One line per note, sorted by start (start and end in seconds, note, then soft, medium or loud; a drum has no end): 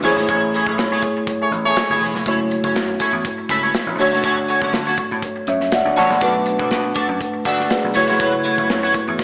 0.02 0.14 A1 loud
0.02 0.17 A3 medium
0.02 1.97 A3 medium
0.02 0.17 E4 medium
0.02 1.98 E4 medium
0.02 0.16 G#4 medium
0.02 1.98 G#4 medium
0.02 0.11 C5 medium
0.02 0.16 C#5 medium
0.02 snare soft
0.02 open hi-hat medium
0.12 0.26 G#1 medium
0.12 2.02 C#5 medium
0.17 0.27 A3 soft
0.17 0.27 E4 medium
0.17 0.27 G#4 medium
0.17 0.26 C#5 medium
0.17 snare soft
0.29 0.60 A1 medium
0.29 0.43 A3 medium
0.29 0.42 E4 medium
0.29 0.42 G#4 medium
0.29 0.41 C#5 medium
0.29 kick loud
0.29 closed hi-hat medium
0.42 muted clean electric guitar stroke soft
0.54 0.65 A3 medium
0.54 0.65 E4 medium
0.54 0.65 G#4 medium
0.54 0.66 C#5 medium
0.54 closed hi-hat medium
0.66 0.77 A1 medium
0.66 0.77 A3 medium
0.66 0.77 E4 soft
0.66 0.76 G#4 medium
0.66 0.76 C#5 medium
0.66 kick medium
0.78 0.98 B1 medium
0.78 muted clean electric guitar stroke soft
0.78 snare loud
0.78 closed hi-hat medium
0.92 1.02 A3 medium
0.92 1.03 E4 medium
0.92 1.03 G#4 medium
0.92 1.03 C#5 medium
1.03 muted clean electric guitar stroke soft
1.03 kick medium
1.03 closed hi-hat medium
1.17 muted clean electric guitar stroke soft
1.27 muted clean electric guitar stroke soft
1.27 kick loud
1.27 closed hi-hat loud
1.41 1.51 A3 medium
1.41 1.51 G#4 medium
1.41 1.51 C#5 medium
1.41 muted clean electric guitar stroke soft
1.51 1.72 A1 medium
1.51 closed hi-hat medium
1.65 2.00 A3 medium
1.65 2.00 G#4 medium
1.65 1.99 C#5 loud
1.65 muted clean electric guitar stroke soft
1.65 snare soft
1.77 muted clean electric guitar stroke soft
1.77 snare loud
1.77 closed hi-hat medium
1.90 1.99 F#1 medium
1.90 2.02 A3 medium
1.90 2.02 E4 medium
1.90 2.03 G#4 medium
1.90 2.03 C#5 medium
2.01 2.12 E1 medium
2.01 2.13 A3 medium
2.01 2.13 E4 medium
2.01 2.14 G#4 medium
2.01 2.14 C#5 medium
2.01 open hi-hat medium
2.14 2.24 F1 medium
2.14 muted clean electric guitar stroke soft
2.14 snare soft
2.26 2.58 F#1 medium
2.26 3.96 A3 medium
2.26 2.40 C#4 medium
2.26 3.96 E4 medium
2.26 2.40 E4 medium
2.26 3.97 F#4 medium
2.26 2.39 A4 medium
2.26 2.39 C#5 medium
2.26 3.97 C#5 medium
2.26 kick loud
2.26 closed hi-hat medium
2.40 muted clean electric guitar stroke soft
2.51 muted clean electric guitar stroke soft
2.51 closed hi-hat medium
2.64 2.74 F#1 medium
2.64 2.74 C#4 medium
2.64 2.74 E4 soft
2.64 2.74 A4 soft
2.64 2.74 C#5 medium
2.64 kick medium
2.75 2.96 F#2 loud
2.75 muted clean electric guitar stroke soft
2.75 snare loud
2.75 closed hi-hat medium
2.88 muted clean electric guitar stroke soft
3.00 3.14 C#4 medium
3.00 3.13 E4 medium
3.00 3.13 A4 medium
3.00 3.12 C#5 medium
3.00 kick medium
3.00 closed hi-hat medium
3.13 3.23 E2 loud
3.13 muted clean electric guitar stroke soft
3.25 muted clean electric guitar stroke soft
3.25 kick loud
3.25 closed hi-hat medium
3.38 muted clean electric guitar stroke soft
3.49 3.70 C#2 medium
3.49 3.63 C#4 medium
3.49 3.63 E4 medium
3.49 3.62 A4 loud
3.49 3.63 E5 medium
3.49 kick medium
3.49 closed hi-hat medium
3.63 3.73 C#4 soft
3.63 3.73 E4 soft
3.63 3.73 A4 soft
3.63 3.72 C#5 medium
3.63 snare soft
3.74 muted clean electric guitar stroke soft
3.74 snare loud
3.74 closed hi-hat medium
3.86 3.96 A1 medium
3.86 muted clean electric guitar stroke soft
3.98 4.12 D2 loud
3.98 5.93 A3 medium
3.98 4.13 C#4 medium
3.98 5.93 D4 medium
3.98 4.13 F#4 medium
3.98 5.94 F#4 medium
3.98 4.12 A4 medium
3.98 5.46 C#5 medium
3.98 4.12 C#5 medium
3.98 open hi-hat medium
4.12 4.22 C#2 medium
4.12 4.23 C#4 soft
4.12 4.23 F#4 medium
4.12 4.22 A4 medium
4.12 4.22 C#5 medium
4.12 snare soft
4.24 4.56 D2 loud
4.24 4.38 C#4 medium
4.24 4.38 F#4 loud
4.24 4.37 A4 loud
4.24 4.36 C#5 medium
4.24 kick loud
4.24 closed hi-hat loud
4.38 muted clean electric guitar stroke soft
4.48 4.60 C#4 medium
4.48 4.60 F#4 medium
4.48 4.60 A4 medium
4.48 4.60 C#5 medium
4.48 closed hi-hat medium
4.61 4.71 D2 medium
4.61 4.73 C#4 medium
4.61 4.72 F#4 medium
4.61 4.72 A4 medium
4.61 4.72 C#5 medium
4.61 kick medium
4.72 4.94 D3 loud
4.72 muted clean electric guitar stroke soft
4.72 snare loud
4.72 closed hi-hat medium
4.87 4.97 C#4 medium
4.87 4.97 F#4 medium
4.87 4.98 A4 medium
4.87 4.98 C#5 medium
4.98 muted clean electric guitar stroke soft
4.98 kick medium
4.98 closed hi-hat medium
5.11 5.21 A2 medium
5.11 muted clean electric guitar stroke soft
5.22 muted clean electric guitar stroke soft
5.22 kick loud
5.22 closed hi-hat loud
5.36 muted clean electric guitar stroke soft
5.47 5.68 F#2 medium
5.47 5.72 C#5 medium
5.47 5.72 E5 medium
5.47 closed hi-hat medium
5.61 muted clean electric guitar stroke soft
5.61 snare soft
5.72 5.97 D5 medium
5.72 5.97 F#5 medium
5.72 snare loud
5.72 closed hi-hat medium
5.85 5.95 D2 medium
5.85 muted clean electric guitar stroke soft
5.96 6.08 A1 loud
5.96 6.11 C#4 medium
5.96 6.11 F#4 medium
5.96 6.10 A4 medium
5.96 6.09 C#5 loud
5.96 6.45 F#5 medium
5.96 6.44 A5 medium
5.96 snare soft
5.96 open hi-hat medium
6.10 6.20 A#1 medium
6.10 muted clean electric guitar stroke soft
6.10 snare soft
6.21 6.54 B1 loud
6.21 7.91 A3 medium
6.21 6.35 D4 medium
6.21 7.91 D4 medium
6.21 6.35 F#4 medium
6.21 7.92 F#4 medium
6.21 6.34 A4 medium
6.21 7.43 B4 medium
6.21 6.34 D5 medium
6.21 kick loud
6.21 closed hi-hat loud
6.35 muted clean electric guitar stroke soft
6.46 muted clean electric guitar stroke soft
6.46 closed hi-hat medium
6.59 6.69 B1 medium
6.59 6.69 D4 medium
6.59 6.70 F#4 medium
6.59 6.69 A4 medium
6.59 6.69 D5 medium
6.59 kick medium
6.71 6.92 B2 loud
6.71 muted clean electric guitar stroke soft
6.71 snare loud
6.71 closed hi-hat medium
6.84 muted clean electric guitar stroke medium
6.95 7.09 D4 medium
6.95 7.09 F#4 medium
6.95 7.08 A4 medium
6.95 7.08 D5 medium
6.95 kick medium
6.95 closed hi-hat medium
7.09 7.19 F#2 medium
7.09 muted clean electric guitar stroke soft
7.20 muted clean electric guitar stroke soft
7.20 kick loud
7.20 closed hi-hat medium
7.34 muted clean electric guitar stroke soft
7.45 7.66 D2 medium
7.45 7.59 D4 medium
7.45 7.59 F#4 medium
7.45 7.58 A4 loud
7.45 7.70 D5 medium
7.45 7.58 E5 medium
7.45 7.69 F#5 medium
7.45 kick medium
7.45 closed hi-hat medium
7.58 7.69 D4 soft
7.58 7.69 F#4 soft
7.58 7.68 A4 medium
7.58 7.68 D5 medium
7.58 snare soft
7.70 8.18 G#4 medium
7.70 8.18 B4 medium
7.70 muted clean electric guitar stroke soft
7.70 snare loud
7.70 closed hi-hat medium
7.83 7.94 B1 medium
7.83 muted clean electric guitar stroke soft
7.94 8.07 F#1 loud
7.94 8.08 A3 medium
7.94 9.24 A3 medium
7.94 8.08 E4 medium
7.94 9.24 E4 medium
7.94 8.08 F#4 medium
7.94 9.24 F#4 medium
7.94 8.07 C#5 medium
7.94 9.24 C#5 medium
7.94 open hi-hat medium
8.08 8.20 F1 medium
8.08 8.18 A3 medium
8.08 8.18 E4 medium
8.08 8.18 F#4 medium
8.08 8.18 C#5 medium
8.08 snare soft
8.20 8.52 F#1 loud
8.20 8.34 A3 medium
8.20 8.33 E4 medium
8.20 8.33 F#4 loud
8.20 8.32 C#5 medium
8.20 kick loud
8.20 closed hi-hat loud
8.33 muted clean electric guitar stroke soft
8.44 8.55 A3 medium
8.44 8.56 E4 medium
8.44 8.56 F#4 medium
8.44 8.56 C#5 medium
8.44 closed hi-hat medium
8.58 8.68 F#1 medium
8.58 8.68 A3 soft
8.58 8.68 E4 medium
8.58 8.68 F#4 medium
8.58 8.67 C#5 medium
8.58 kick medium
8.69 8.91 F#2 medium
8.69 muted clean electric guitar stroke soft
8.69 snare loud
8.69 closed hi-hat medium
8.83 8.93 A3 medium
8.83 8.94 E4 medium
8.83 8.94 F#4 medium
8.83 8.95 C#5 medium
8.94 kick medium
8.94 closed hi-hat medium
9.08 9.17 E2 loud
9.08 muted clean electric guitar stroke soft
9.19 muted clean electric guitar stroke soft
9.19 kick medium
9.19 snare medium